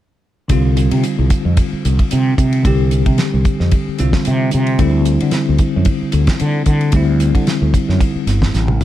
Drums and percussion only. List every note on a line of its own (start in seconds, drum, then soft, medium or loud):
0.49 kick medium
0.49 hi-hat pedal medium
0.49 ride medium
0.77 hi-hat pedal medium
0.77 ride soft
0.91 ride medium
1.03 hi-hat pedal medium
1.03 ride medium
1.30 kick medium
1.30 hi-hat pedal medium
1.30 ride soft
1.57 kick medium
1.57 hi-hat pedal medium
1.57 ride medium
1.85 hi-hat pedal medium
1.85 ride soft
1.99 kick medium
1.99 ride soft
2.11 hi-hat pedal medium
2.11 ride medium
2.38 kick medium
2.38 hi-hat pedal medium
2.38 ride soft
2.53 ride soft
2.65 kick medium
2.65 hi-hat pedal medium
2.65 ride medium
2.91 hi-hat pedal medium
2.91 ride soft
3.06 kick medium
3.06 ride medium
3.18 snare medium
3.18 hi-hat pedal medium
3.18 ride soft
3.45 kick medium
3.45 hi-hat pedal medium
3.45 ride soft
3.60 snare soft
3.71 kick medium
3.71 hi-hat pedal medium
3.71 ride medium
3.98 hi-hat pedal medium
3.98 ride soft
4.13 kick medium
4.13 snare medium
4.25 hi-hat pedal medium
4.25 ride medium
4.51 hi-hat pedal medium
4.51 ride soft
4.67 ride soft
4.79 kick medium
4.79 hi-hat pedal medium
4.79 ride medium
5.05 hi-hat pedal medium
5.05 ride medium
5.20 ride medium
5.31 snare medium
5.31 hi-hat pedal medium
5.31 ride medium
5.58 kick medium
5.58 hi-hat pedal medium
5.58 ride soft
5.85 kick medium
5.85 hi-hat pedal medium
5.85 ride medium
6.12 hi-hat pedal medium
6.12 ride medium
6.27 kick medium
6.27 snare medium
6.27 ride medium
6.40 hi-hat pedal medium
6.40 ride medium
6.66 kick medium
6.66 hi-hat pedal medium
6.66 ride medium
6.81 ride soft
6.92 kick medium
6.92 hi-hat pedal medium
6.92 ride medium
7.20 hi-hat pedal medium
7.20 ride medium
7.35 kick medium
7.35 ride medium
7.47 snare medium
7.47 hi-hat pedal medium
7.47 ride medium
7.74 kick medium
7.74 hi-hat pedal medium
7.74 ride medium
7.90 snare soft
8.00 kick medium
8.00 hi-hat pedal medium
8.00 ride medium
8.27 snare soft
8.27 hi-hat pedal medium
8.27 ride medium
8.42 kick medium
8.42 snare medium
8.54 snare soft
8.54 hi-hat pedal medium
8.68 high tom soft
8.81 hi-hat pedal medium
8.81 mid tom medium